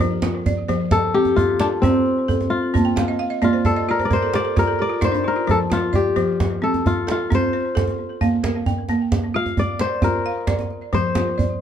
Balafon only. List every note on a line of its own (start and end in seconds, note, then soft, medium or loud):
0.00 0.46 F3 medium
0.00 0.10 F4 medium
0.00 0.67 C5 medium
0.23 0.92 F4 medium
0.46 1.15 D5 medium
0.68 1.15 F3 medium
0.68 1.37 C5 medium
1.15 1.61 C4 medium
1.61 2.27 A4 medium
1.84 2.29 C4 medium
2.28 2.74 A4 medium
2.74 3.20 A#3 medium
2.74 2.96 A5 medium
2.85 3.07 G5 medium
2.96 3.18 F5 medium
3.08 3.29 D#5 medium
3.19 3.41 F5 medium
3.30 3.52 D#5 medium
3.42 3.88 A#3 medium
3.42 3.63 D5 medium
3.53 3.75 C5 medium
3.65 3.87 D5 medium
3.76 3.98 D#5 medium
3.89 4.34 F4 medium
3.89 4.10 D5 medium
4.00 4.21 C5 medium
4.11 4.32 A#4 medium
4.22 4.44 A4 medium
4.33 4.55 G4 medium
4.45 4.66 A4 medium
4.57 4.88 F4 medium
4.57 4.78 A#4 medium
4.67 4.89 A4 medium
4.79 5.00 G4 medium
4.89 5.11 F4 medium
5.01 5.23 D#4 medium
5.01 5.47 D5 medium
5.12 5.34 D4 medium
5.24 5.46 D#4 medium
5.36 5.57 F4 medium
5.47 5.93 F3 medium
5.47 6.15 C5 medium
5.70 6.39 F4 medium
5.93 6.61 D5 medium
6.16 6.62 F3 medium
6.16 6.84 C5 medium
6.62 7.07 C4 medium
7.07 7.74 A4 medium
7.31 7.76 C4 medium
7.53 8.21 C5 medium
7.75 8.21 A4 medium
8.21 8.67 A#3 medium
8.21 8.89 F5 medium
8.44 9.12 A#4 medium
8.66 9.35 G5 medium
8.89 9.35 A#3 medium
9.34 9.80 F4 medium
9.80 10.46 D5 medium
10.03 10.48 F4 medium
10.26 10.94 F5 medium
10.47 10.93 D5 medium
10.93 11.39 F3 medium
10.93 11.60 C5 medium
11.15 11.61 F4 medium
11.38 11.61 D5 medium